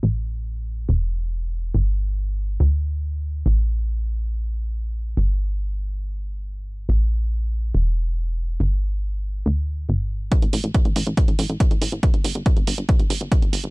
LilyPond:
<<
  \new Staff \with { instrumentName = "Analog synth bass" } { \clef bass \time 4/4 \key g \major \tempo 4 = 140 a,,2 e,,2 | g,,2 d,2 | a,,1 | g,,1 |
a,,2 e,,2 | g,,2 d,4 g,,4 | r16 a,,16 a,,16 a,,16 r16 a,,16 a,,16 a,,16 r16 a,,16 a,,16 a,,16 r16 a,,16 a,,16 a,,16 | r16 g,,16 g,,16 g,,16 r16 g,,16 g,,16 g,,16 r16 g,,16 g,,16 g,,16 r16 g,,16 g,,16 g,,16 | }
  \new DrumStaff \with { instrumentName = "Drums" } \drummode { \time 4/4 r4 r4 r4 r4 | r4 r4 r4 r4 | r4 r4 r4 r4 | r4 r4 r4 r4 |
r4 r4 r4 r4 | r4 r4 r4 r4 | <hh bd>16 hh16 hho16 hh16 <hh bd>16 hh16 hho16 hh16 <hh bd>16 hh16 hho16 hh16 <hh bd>16 hh16 hho16 hh16 | <hh bd>16 hh16 hho16 hh16 <hh bd>16 hh16 hho16 hh16 <hh bd>16 hh16 hho16 hh16 <hh bd>16 hh16 hho8 | }
>>